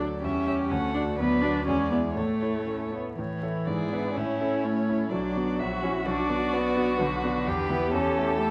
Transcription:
0.00 0.25 D2 soft
0.00 0.26 F#3 soft
0.00 0.26 A3 soft
0.00 0.26 F#4 soft
0.00 0.22 A4 soft
0.00 0.26 A4 soft
0.00 0.25 D5 soft
0.22 0.47 E2 soft
0.22 0.73 G3 soft
0.22 0.93 C#4 medium
0.22 0.73 G4 soft
0.22 0.47 E5 soft
0.47 0.69 G4 soft
0.47 0.69 C#5 soft
0.47 0.55 E5 soft
0.70 0.94 D2 soft
0.70 1.19 A3 soft
0.70 1.18 A4 soft
0.70 1.18 F#5 soft
0.94 1.02 D4 medium
0.94 1.17 F#4 soft
0.94 1.17 D5 soft
1.19 1.43 D2 soft
1.19 1.68 F#3 soft
1.19 1.43 B3 medium
1.19 1.66 B4 medium
1.19 1.64 D5 soft
1.41 1.66 D4 medium
1.41 1.65 F#4 soft
1.41 1.66 D5 soft
1.66 1.91 E2 soft
1.66 2.18 G#3 soft
1.66 1.90 C#4 medium
1.66 2.18 G#4 soft
1.66 2.14 D5 soft
1.91 1.99 B3 soft
1.91 2.15 E4 soft
1.91 2.15 D5 soft
2.15 2.41 A2 soft
2.15 2.91 A3 soft
2.15 2.62 A3 soft
2.15 2.93 A4 soft
2.15 2.95 C#5 soft
2.42 2.65 E4 soft
2.42 2.65 C#5 soft
2.66 2.90 A3 soft
2.66 2.90 C#4 soft
2.66 2.90 E4 soft
2.66 2.91 C#5 soft
2.92 3.17 B3 soft
2.92 3.16 E4 soft
2.92 3.16 C#5 soft
3.17 3.42 A2 soft
3.17 3.87 E3 soft
3.17 5.13 E4 soft
3.17 3.68 C#5 soft
3.43 3.65 A3 soft
3.43 3.65 E4 soft
3.43 3.65 C#5 soft
3.67 3.91 G#2 soft
3.67 4.19 G#4 soft
3.67 4.19 D5 soft
3.92 4.13 B3 medium
3.92 4.14 D4 soft
3.92 4.14 E4 soft
3.92 4.14 B4 soft
4.14 4.40 A2 soft
4.14 4.66 C#4 medium
4.14 4.66 E4 soft
4.14 5.11 C#5 soft
4.41 4.84 C#4 soft
4.41 4.84 E4 soft
4.41 4.84 A4 soft
4.64 5.10 A3 medium
4.64 5.11 C#4 soft
4.89 5.09 C#4 soft
4.89 5.10 E4 soft
4.89 5.10 A4 soft
5.10 5.34 B1 soft
5.10 5.80 F#3 medium
5.10 5.62 D4 soft
5.10 6.99 F#4 soft
5.10 5.61 D5 soft
5.36 5.57 B3 soft
5.36 5.57 D4 soft
5.36 5.57 F#4 soft
5.59 5.82 A#1 soft
5.59 6.05 F#4 soft
5.59 6.08 E5 soft
5.82 5.90 C#4 medium
5.82 6.04 C#4 soft
5.82 6.04 E4 soft
5.82 6.05 F#4 soft
6.06 6.29 B1 soft
6.06 6.55 D4 medium
6.06 7.49 F#4 medium
6.06 7.00 D5 soft
6.29 6.72 B3 soft
6.29 6.72 D4 soft
6.29 6.72 F#4 soft
6.53 7.02 B3 medium
6.77 6.97 B3 soft
6.77 6.98 D4 soft
6.77 6.98 F#4 soft
6.99 7.22 B1 medium
6.99 7.71 D3 medium
6.99 7.47 F#4 soft
6.99 7.97 B4 soft
7.24 7.44 B3 soft
7.24 7.45 D4 soft
7.24 7.45 F#4 soft
7.46 7.70 E2 medium
7.46 8.51 G4 medium
7.46 7.93 G4 medium
7.70 7.93 B3 medium
7.70 7.91 B3 soft
7.70 7.92 E4 soft
7.70 7.92 G4 soft
7.93 8.17 E2 medium
7.93 8.40 C#4 medium
7.93 8.51 A4 medium
7.93 8.51 A4 soft
8.18 8.51 A3 soft
8.18 8.51 E4 soft
8.18 8.51 G4 soft
8.42 8.51 A3 medium

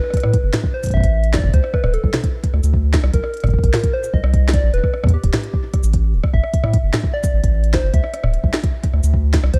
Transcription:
0.00 0.75 B4 loud
0.00 cross-stick soft
0.10 kick loud
0.10 cross-stick soft
0.10 closed hi-hat medium
0.17 cross-stick soft
0.17 closed hi-hat medium
0.20 0.37 A2 loud
0.20 cross-stick medium
0.20 closed hi-hat medium
0.20 mid tom medium
0.34 kick loud
0.34 closed hi-hat loud
0.44 0.50 G1 loud
0.54 snare loud
0.54 closed hi-hat medium
0.54 mid tom loud
0.64 kick loud
0.74 0.95 C5 loud
0.84 kick medium
0.84 closed hi-hat medium
0.84 shaker medium
0.86 kick medium
0.86 closed hi-hat medium
0.89 kick medium
0.89 closed hi-hat medium
0.91 1.00 A1 medium
0.91 1.35 E5 loud
0.91 kick medium
0.91 closed hi-hat soft
0.97 kick loud
1.00 kick loud
1.00 closed hi-hat loud
1.04 1.38 A1 medium
1.04 kick loud
1.24 closed hi-hat medium
1.34 1.55 D5 loud
1.34 kick loud
1.34 snare loud
1.39 kick medium
1.44 1.50 G1 medium
1.44 kick medium
1.49 kick medium
1.54 1.60 D2 loud
1.54 1.73 C5 loud
1.54 kick loud
1.54 closed hi-hat medium
1.64 cross-stick medium
1.74 1.95 B4 loud
1.74 kick loud
1.74 cross-stick medium
1.84 1.97 D1 loud
1.84 cross-stick medium
1.84 mid tom medium
1.94 2.74 A4 medium
1.94 closed hi-hat medium
2.04 2.10 C2 loud
2.04 kick loud
2.14 snare loud
2.14 mid tom medium
2.24 kick loud
2.24 closed hi-hat medium
2.44 kick loud
2.44 closed hi-hat loud
2.54 2.60 D2 medium
2.54 cross-stick soft
2.64 2.98 D2 medium
2.64 closed hi-hat medium
2.64 shaker medium
2.74 kick loud
2.94 kick loud
2.94 snare loud
2.94 closed hi-hat medium
3.04 3.10 C2 medium
3.04 cross-stick medium
3.14 3.20 C2 loud
3.14 3.95 A#4 loud
3.14 kick loud
3.14 closed hi-hat loud
3.24 cross-stick medium
3.34 closed hi-hat soft
3.37 closed hi-hat soft
3.40 cross-stick medium
3.40 closed hi-hat soft
3.44 3.57 G1 loud
3.44 kick soft
3.44 closed hi-hat soft
3.44 mid tom medium
3.47 kick medium
3.47 closed hi-hat soft
3.50 kick medium
3.50 closed hi-hat soft
3.59 kick loud
3.64 3.70 A#1 loud
3.64 kick loud
3.64 closed hi-hat medium
3.74 snare loud
3.74 mid tom medium
3.84 kick loud
3.84 closed hi-hat loud
3.94 4.13 C5 loud
4.04 shaker medium
4.14 4.20 C2 medium
4.14 4.55 D#5 loud
4.14 kick loud
4.24 4.58 C2 loud
4.24 cross-stick medium
4.34 kick loud
4.34 closed hi-hat medium
4.49 snare loud
4.54 4.75 D5 loud
4.54 kick loud
4.54 closed hi-hat loud
4.64 4.70 A#1 medium
4.74 4.80 E1 loud
4.74 5.13 B4 loud
4.74 closed hi-hat soft
4.84 kick loud
4.84 cross-stick medium
4.94 cross-stick medium
5.04 5.17 E2 loud
5.04 kick loud
5.04 cross-stick medium
5.04 mid tom medium
5.07 kick loud
5.07 closed hi-hat medium
5.10 5.90 G4 medium
5.10 kick medium
5.24 5.30 D1 loud
5.24 kick loud
5.24 closed hi-hat loud
5.34 snare loud
5.34 mid tom loud
5.44 closed hi-hat medium
5.54 kick loud
5.74 kick loud
5.74 cross-stick soft
5.74 closed hi-hat medium
5.84 6.15 A1 medium
5.84 shaker medium
5.94 kick loud
5.94 closed hi-hat medium
6.14 6.20 D1 loud
6.24 kick loud
6.24 cross-stick medium
6.34 6.40 A1 loud
6.34 7.15 E5 loud
6.34 kick loud
6.44 cross-stick medium
6.54 kick loud
6.54 closed hi-hat medium
6.64 6.77 A2 loud
6.64 cross-stick medium
6.64 mid tom medium
6.74 kick loud
6.74 closed hi-hat loud
6.84 6.90 G1 medium
6.94 snare loud
6.94 closed hi-hat medium
6.94 mid tom loud
7.04 kick loud
7.14 7.73 D5 loud
7.24 kick loud
7.24 closed hi-hat medium
7.24 shaker medium
7.34 7.40 A1 medium
7.44 7.78 A1 loud
7.44 kick loud
7.44 closed hi-hat medium
7.64 closed hi-hat medium
7.74 7.95 C5 medium
7.74 kick loud
7.74 snare loud
7.84 7.90 G1 medium
7.94 8.00 D2 loud
7.94 8.54 E5 loud
7.94 kick loud
7.94 closed hi-hat medium
8.04 cross-stick medium
8.14 cross-stick medium
8.14 closed hi-hat medium
8.24 8.37 D1 loud
8.24 cross-stick medium
8.24 mid tom loud
8.34 closed hi-hat medium
8.44 8.50 C2 loud
8.44 kick loud
8.54 snare loud
8.64 kick loud
8.64 closed hi-hat medium
8.84 kick loud
8.84 closed hi-hat medium
8.94 9.00 D2 medium
8.94 cross-stick soft
9.04 9.38 D2 medium
9.04 closed hi-hat soft
9.04 shaker medium
9.14 kick loud
9.34 kick loud
9.34 snare loud
9.34 closed hi-hat medium
9.44 9.50 C2 medium
9.44 cross-stick medium
9.54 9.59 C2 loud
9.54 9.59 C5 loud
9.54 kick loud
9.54 closed hi-hat medium

